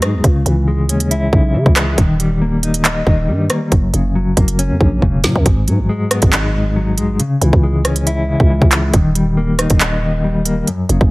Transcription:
Already playing: G#2 F#3 D#4
0.02 G#2 G#3, cross-stick, closed hi-hat
0.14 D#2
0.24 C#2 C#3, kick, closed hi-hat
0.46 C#2 E3, closed hi-hat
0.68 G#3
0.89 D#2 C#4, closed hi-hat
1.00 closed hi-hat
1.11 C#2 E4, closed hi-hat
1.33 B1 C#3, kick
1.55 C#3 E3
1.66 C#2, kick
1.76 G#3, cross-stick, clap, closed hi-hat
1.98 D#1 D#3, kick, closed hi-hat
2.20 G3, closed hi-hat
2.42 A#3
2.63 D#4, closed hi-hat
2.74 closed hi-hat
2.85 D#5, clap, closed hi-hat
3.07 D#1 D#3, kick
3.28 G2 G3
3.50 A#3, cross-stick, closed hi-hat
3.72 F#1 F#2, kick, closed hi-hat
3.94 F#1 C#3, closed hi-hat
4.15 F#3
4.37 F#1 A#3, kick, closed hi-hat
4.48 closed hi-hat
4.59 C#4, closed hi-hat
4.70 F#2
4.81 A#1 F#2, kick
5.02 E1 C#3, kick
5.24 A#2 F#3, snare, closed hi-hat
5.36 F#2, kick
5.46 G#1 G#2, kick, closed hi-hat
5.67 G#2 F#3, closed hi-hat
5.79 G#1
5.89 G#3
6.11 B3, cross-stick, closed hi-hat
6.22 G#1, kick, closed hi-hat
6.33 D#4, clap, closed hi-hat
6.54 G#2
6.76 F#3
6.98 B1 G#3, closed hi-hat
7.10 G#1
7.20 C#3, closed hi-hat
7.41 C#2 E3, closed hi-hat
7.53 C#2, kick
7.63 G#3
7.85 C#4, cross-stick, closed hi-hat
7.96 closed hi-hat
8.07 E4, closed hi-hat
8.28 C#3
8.40 C#2, kick
8.50 E3
8.62 C#2, kick
8.71 G#3, clap, closed hi-hat
8.94 D#1 D#3, kick, closed hi-hat
9.15 G3, closed hi-hat
9.37 A#3
9.59 D#4, cross-stick, closed hi-hat
9.70 D#1, kick, closed hi-hat
9.80 D#5, clap, closed hi-hat
10.02 D#3
10.24 G3
10.45 A#3, closed hi-hat
10.67 F#2, closed hi-hat
10.89 F#1 C#3, closed hi-hat
11.01 F#1, kick

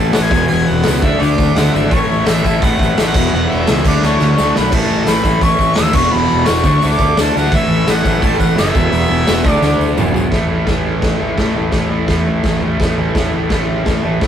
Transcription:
Already playing: A2 E3 A3 A5
0.13 A2 E3 A3 F#5, snare, open hi-hat, tambourine
0.18 A1
0.23 G#5
0.30 E1 E2 B2 E3, kick, tambourine
0.48 E1 E2 B2 E3 G#5, open hi-hat
0.53 tambourine
0.69 E1 F#5, tambourine
0.83 C#2 E2 B2 E3, snare, open hi-hat
0.88 tambourine
1.02 D2 D3 A3 D4 E5, kick
1.19 D2 D3 A3 D4 D5, open hi-hat, tambourine
1.38 D2, kick, tambourine
1.53 D2 F#5, snare, open hi-hat
1.58 D3 A3 D4, tambourine
1.73 G#1 D3 A3 D4 E5, tambourine
1.91 A1 A2 E3 A3 C#5, kick, open hi-hat, tambourine
2.10 A1, tambourine
2.26 A1 A2 E3 A3 E5, snare, open hi-hat, tambourine
2.44 A1 A2 E3 A3, kick, tambourine
2.62 A1 A2 E3 A3 F#5, kick, open hi-hat, tambourine
2.79 A1, kick, tambourine
2.97 A1 A2 E3 A3 E5, snare, open hi-hat, tambourine
3.08 F#5
3.14 E1 E2 B2 E3, kick, tambourine, crash
3.33 E1 E2 B2 E3 F#5, tambourine
3.49 E1 E5, tambourine
3.67 C#2 E2 B2 E3, snare, open hi-hat, tambourine
3.85 D2 D3 A3 D4 D5, kick, tambourine, crash
4.02 D2 D3 A3 D4 C#5, snare, tambourine
4.20 D2, snare, tambourine
4.38 D2 D3 A3 D4 C#6, snare, tambourine
4.53 D3 A5, snare
4.57 B1 A3 D4 B5, tambourine
4.72 A1 A2 E3 A3 A5, kick, open hi-hat, crash
4.88 A1, tambourine
5.06 A1 A2 E3 A3 B5, snare, open hi-hat, tambourine
5.24 A1 A2 E3 A3, kick, tambourine
5.41 A1 A2 E3 A3 C#6, kick, open hi-hat, tambourine
5.59 A1, kick, tambourine
5.75 D#2 A2 E3 A3 E6, snare, open hi-hat, tambourine
5.93 E1 E2 B2 E3 C#6, kick, tambourine, crash
6.12 E1 E2 B2 E3 B5, tambourine
6.30 E1, tambourine
6.46 E1 E2 B2 E3 C#6, snare, open hi-hat, tambourine
6.64 D2 D3 A3 D4, kick, tambourine
6.81 D2 D3 A3 D4 D6, open hi-hat, tambourine
6.99 D2, kick, tambourine
7.17 D2 D3 A3 D4, snare, open hi-hat, tambourine
7.21 A5
7.36 D2 D3 A3 D4 F#5, tambourine
7.51 A1 A2 E3 A3, kick, open hi-hat
7.56 E5
7.68 A1, tambourine
7.87 A1 A2 E3 A3 F#5, snare, open hi-hat, tambourine
8.04 A1 A2 E3 A3, kick, tambourine
8.22 A1 A2 E3 A3 A5, kick, open hi-hat, tambourine
8.40 A1 F#5, kick, tambourine
8.56 F#1 A2 E3 A3 E5, snare, open hi-hat, tambourine
8.73 E1 E2 B2 E3, kick, tambourine
8.91 E1 E2 B2 E3, open hi-hat, tambourine
9.10 E1, tambourine
9.27 E1 E2 B2 E3, snare, open hi-hat, tambourine
9.45 D2 D3 A3 D4, kick, tambourine
9.50 D5
9.61 D2 D3 A3 D4, snare, tambourine
9.78 D2, tambourine
9.95 E1 E2 B2, mid tom, tambourine
9.99 E3
10.11 B1 E2 B2 E3, floor tom
10.16 tambourine
10.31 A1 A2 E3 A3, kick, snare, floor tom
10.49 A1 E3 A3, floor tom
10.66 A1 A2 E3 A3, kick, snare, floor tom
10.86 floor tom
11.02 A1, kick, snare, floor tom
11.20 A1 E3 A3, floor tom
11.37 A1 A2 E3 A3, kick, snare, floor tom
11.52 E3 A3, floor tom
11.57 A1
11.72 A1 A2 E3 A3, kick, snare, floor tom
11.90 E3 A3, floor tom
12.08 E2 A2 E3, kick, snare, floor tom
12.12 A3
12.26 A1, floor tom
12.43 A1, kick, snare, floor tom
12.61 A1 A3, floor tom
12.65 E3
12.80 A1 A2 E3 A3, kick, snare, floor tom
12.97 E3 A3, floor tom
13.15 A1 A2 E3 A3, kick, snare, floor tom
13.33 A1 A3, floor tom
13.38 E3
13.50 A1 A2 E3, kick, snare, floor tom
13.56 A3
13.68 floor tom
13.86 A1, kick, snare, floor tom
14.03 A1 E3 A3, floor tom
14.21 A1 A2 E3, kick, snare, floor tom

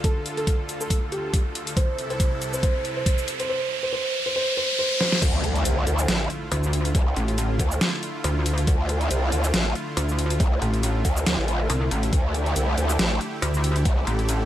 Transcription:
Already playing: D2 D3 F4 A4, riser
0.04 A4, kick, closed hi-hat
0.26 closed hi-hat
0.37 A4, closed hi-hat
0.47 kick, closed hi-hat
0.69 closed hi-hat, shaker
0.81 A4, shaker
0.90 kick, closed hi-hat
1.12 G4, closed hi-hat
1.34 kick, closed hi-hat
1.55 open hi-hat
1.67 closed hi-hat
1.77 C2 C3 E4 A4 C5, kick, closed hi-hat
1.98 closed hi-hat
2.10 C5, closed hi-hat
2.20 kick, closed hi-hat, shaker
2.42 closed hi-hat, shaker
2.53 C5, shaker
2.63 C5, kick, closed hi-hat
2.85 closed hi-hat
2.96 C5
3.06 kick, closed hi-hat
3.18 shaker
3.28 open hi-hat
3.40 C5, closed hi-hat
3.49 C5
3.83 C5
3.93 C5
4.26 C5
4.36 C5
4.57 C5
4.79 C5
5.01 C5, snare
5.12 snare
5.22 D2 D3 A3 E4 F4, kick, closed hi-hat, crash, impact
5.44 closed hi-hat
5.55 closed hi-hat
5.65 C2, closed hi-hat, shaker
5.87 D2, closed hi-hat, shaker
5.99 shaker
6.08 A1, snare, closed hi-hat
6.30 closed hi-hat
6.52 D2, closed hi-hat
6.63 shaker
6.73 open hi-hat
6.85 closed hi-hat
6.95 C2, kick, closed hi-hat
7.16 A1, closed hi-hat
7.28 closed hi-hat
7.38 closed hi-hat, shaker
7.59 D2, kick, closed hi-hat, shaker
7.71 shaker
7.81 snare, closed hi-hat
8.03 closed hi-hat
8.24 D2, closed hi-hat
8.46 open hi-hat
8.58 closed hi-hat
8.67 D2, kick, closed hi-hat
8.89 closed hi-hat
9.01 closed hi-hat
9.11 C2, closed hi-hat, shaker
9.32 D2, closed hi-hat, shaker
9.44 shaker
9.54 A1, snare, closed hi-hat
9.75 closed hi-hat
9.97 D2, closed hi-hat
10.09 shaker
10.19 open hi-hat
10.30 closed hi-hat
10.40 C2, kick, closed hi-hat
10.62 A1, closed hi-hat
10.74 closed hi-hat
10.83 closed hi-hat, shaker
11.05 D2, kick, closed hi-hat, shaker
11.17 shaker
11.26 D2, snare, closed hi-hat
11.38 A1
11.48 closed hi-hat
11.70 C2, closed hi-hat
11.91 A1, open hi-hat
12.03 closed hi-hat
12.13 D2 G4, kick, closed hi-hat
12.34 closed hi-hat
12.46 closed hi-hat
12.56 C2, closed hi-hat, shaker
12.78 D2, closed hi-hat, shaker
12.89 shaker
12.99 A1, snare, closed hi-hat
13.21 closed hi-hat
13.42 D2, closed hi-hat
13.54 shaker
13.64 open hi-hat
13.76 closed hi-hat
13.85 C2, kick, closed hi-hat
14.07 A1, closed hi-hat
14.19 closed hi-hat
14.29 closed hi-hat, shaker

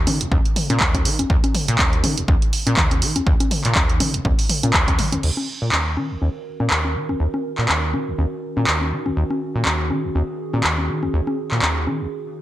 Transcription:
0.07 D#3, open hi-hat, mid tom, high conga
0.21 D#2, closed hi-hat
0.32 D#2, kick, high conga
0.45 closed hi-hat
0.56 open hi-hat, mid tom
0.70 A#2, closed hi-hat, high conga
0.80 D#2, kick, clap
0.95 kick, closed hi-hat, high conga
1.05 D#3, open hi-hat
1.19 D#2, closed hi-hat, high conga
1.30 D#2, kick
1.44 closed hi-hat, high conga
1.55 open hi-hat, mid tom
1.68 A#2, closed hi-hat
1.79 D#2, kick, clap, high conga
1.93 closed hi-hat
2.04 D#3, open hi-hat, mid tom, high conga
2.17 D#2, closed hi-hat
2.28 D#2, kick, high conga
2.42 closed hi-hat
2.53 open hi-hat
2.67 A#2, closed hi-hat, high conga
2.77 D#2, kick, clap, mid tom
2.91 closed hi-hat, high conga
3.02 D#3, open hi-hat
3.16 D#2, closed hi-hat, high conga
3.27 D#2, kick
3.40 closed hi-hat, high conga
3.51 open hi-hat, mid tom
3.64 A#2, clap, closed hi-hat
3.75 D#2, kick, clap, high conga
3.90 closed hi-hat
4.00 D#3, open hi-hat, mid tom, high conga
4.14 D#2, closed hi-hat
4.25 D#2, kick, high conga
4.39 open hi-hat
4.49 open hi-hat, mid tom
4.63 A#2, closed hi-hat, high conga
4.74 D#2, kick, clap
4.88 kick, closed hi-hat, high conga
4.99 D#3, open hi-hat, high tom
5.12 D#2, closed hi-hat, mid tom, high conga
5.23 D#2 D#3 C#4 F#4 A#4, crash
5.37 high conga
5.62 A#2
5.72 D#2, clap, high conga
5.97 D#3, high conga
6.11 D#2
6.22 D#2, high conga
6.60 A#2, high conga
6.70 D#2, clap
6.85 high conga
6.95 D#3
7.09 D#2, high conga
7.20 D#2
7.34 high conga
7.58 A#2, clap
7.69 D#2, clap, high conga
7.94 D#3, high conga
8.08 D#2
8.18 D#2, high conga
8.57 A#2, high conga
8.67 D#2, clap
8.81 high conga
8.92 D#3
9.06 D#2, high conga
9.17 D#2 G#4
9.31 high conga
9.55 A#2
9.65 D#2, clap, high conga
9.90 D#3, high conga
10.04 D#2
10.15 D#2, high conga
10.53 A#2, high conga
10.64 D#2, clap
10.78 high conga
10.89 D#3
11.03 D#2, high conga
11.13 D#2
11.27 high conga
11.51 A#2, clap
11.62 D#2, clap, high conga
11.87 D#3, high conga
12.01 D#2

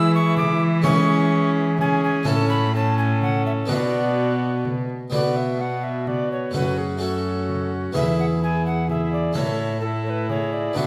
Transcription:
Already playing: E3 G#3 E4 G#4 E6
0.15 C#6
0.37 D6, frame drum
0.82 G#3 C#4 E4 G#4 C#6, frame drum
1.79 C#4 G#4 G#5, frame drum
2.04 G#5
2.23 A2 C#4 E4 A4, frame drum
2.27 A2 A5
2.49 B5
2.74 C#4 A4 A5
2.98 G#5
3.21 F#5, frame drum
3.46 E5
3.66 B2 B3 D4 F#4, frame drum
3.70 B2 E5
3.75 D5
4.65 frame drum
5.10 B2 B3 D4 F#4 D5, frame drum
5.36 E5
5.60 B3 F#4 F#5
5.84 E5
6.07 B3 F#4 D5, frame drum
6.32 C#5
6.51 F#2 A3 C#4 F#4, frame drum
6.55 F#2 C#4 B4
6.78 G#4
6.98 A3 C#4 F#4
7.02 C#4 F#4 A4
7.49 frame drum
7.92 E2 B3 E4 G#4, frame drum
7.97 E5
8.20 F#5
8.42 E4 G#4 G#5
8.66 F#5
8.89 E4 G#4 E5, frame drum
9.13 D5
9.33 A2 A3 C#4 E4 A4 C#5, frame drum
9.37 A2 E4
9.81 E4 A4
9.85 A4
10.06 C#5
10.10 B4
10.29 G#4 C#5, frame drum
10.53 D5
10.73 B2 B3 D4 F#4 E5, frame drum
10.78 B2

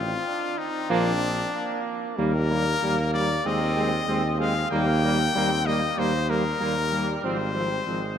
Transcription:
Already playing: A1 C4 F4
0.27 D4
0.58 C4 D#4
0.89 A#1 F3 A#3 D4
1.53 A#3
2.18 D#2 G3 A#3 A#4
2.50 G3 A#3
2.82 D#2 G3 A#3
3.13 G3 A#3 D5
3.44 D#2 G#3 C4 D#5
3.76 G#3 C4
4.08 D#2 G#3 C4
4.39 G#3 C4 F5
4.70 D#2 G3 A#3 G5
5.04 G3 A#3
5.35 D#2 G3 A#3 C4
5.66 G3 A#3 D#5
5.98 D#2 G3 A#3 C5
6.29 G3 A#3 A#4
6.60 D#2 G3 A#3
6.92 G3 A#3
7.23 G#1 F3 C4 C5
7.55 F3 C4
7.86 G#1 F3 G#3 C4

